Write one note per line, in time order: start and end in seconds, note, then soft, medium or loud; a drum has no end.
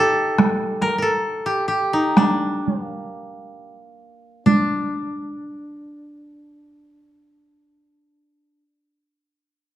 0.00 1.87 D#4 medium
0.00 1.46 G4 medium
0.00 0.88 A4 medium
0.38 taiko rim soft
0.38 taiko high soft
0.82 0.98 A#4 medium
0.82 taiko rim soft
0.82 taiko high soft
0.98 1.08 A#4 soft
1.02 2.93 A4 medium
1.46 1.68 G4 medium
1.68 3.72 G4 medium
1.93 2.23 D#4 medium
2.17 2.85 D4 soft
2.17 taiko rim soft
2.17 taiko high soft
2.68 taiko high soft
2.85 4.46 A#3 soft
4.46 8.62 D4 medium
4.46 taiko high medium